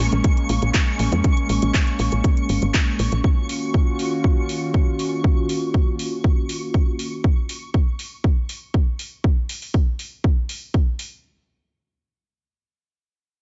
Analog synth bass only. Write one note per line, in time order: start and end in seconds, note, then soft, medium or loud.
0.12 0.22 A#1 medium
0.49 0.60 A#1 medium
0.62 0.72 A#1 medium
0.99 1.10 A#1 medium
1.12 1.22 F2 medium
1.49 1.60 A#1 medium
1.62 1.72 A#1 medium
1.99 2.10 A#1 medium
2.12 2.22 A#1 medium
2.49 2.60 G#1 medium
2.62 2.72 G#1 medium
2.99 3.10 A#1 medium
3.12 3.22 A#1 medium